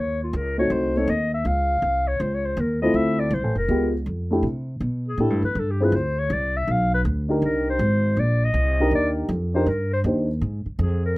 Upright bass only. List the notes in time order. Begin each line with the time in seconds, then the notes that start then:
Already playing: D#2
0.33 C#2
0.70 C2
1.08 D#2
1.45 C#2
1.82 C2
2.20 C#2
2.57 D#2
2.94 D2
3.31 C2
3.43 A1
3.55 F1
3.68 C#2
4.06 F2
4.43 C3
4.80 B2
5.18 A2
5.30 G2
5.42 E2
5.55 G2
5.92 D2
6.30 C2
6.67 B1
7.05 D2
7.42 C2
7.79 G#1
8.17 A#1
8.54 C2
8.91 D#2
9.29 F2
9.66 G2
10.04 D#2
10.41 G#2
10.66 muted upright bass stroke
10.79 F2